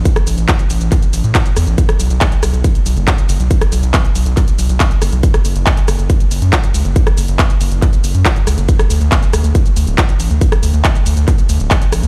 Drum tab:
HH |xxoxxxoxxxoxxxox|xxoxxxoxxxoxxxox|xxoxxxoxxxoxxxox|xxoxxxoxxxoxxxox|
SH |xxxxxxxxxxxxxxxx|xxxxxxxxxxxxxxxx|xxxxxxxxxxxxxxxx|xxxxxxxxxxxxxxxx|
CP |----x---x---x---|----x-------x---|----x---x---x---|----x-------x---|
SD |-r------------r-|-r----r---------|-r------------r-|-r----r---------|
BD |o---o---o---o---|o---o---o---o---|o---o---o---o---|o---o---o---o---|

HH |xxoxxxoxxxoxxxox|xxoxxxoxxxoxxxox|xxoxxxoxxxoxxxox|
SH |xxxxxxxxxxxxxxxx|xxxxxxxxxxxxxxxx|xxxxxxxxxxxxxxxx|
CP |----x---x---x---|----x-------x---|----x---x---x---|
SD |-r------------r-|-r----r---------|-r------------r-|
BD |o---o---o---o---|o---o---o---o---|o---o---o---o---|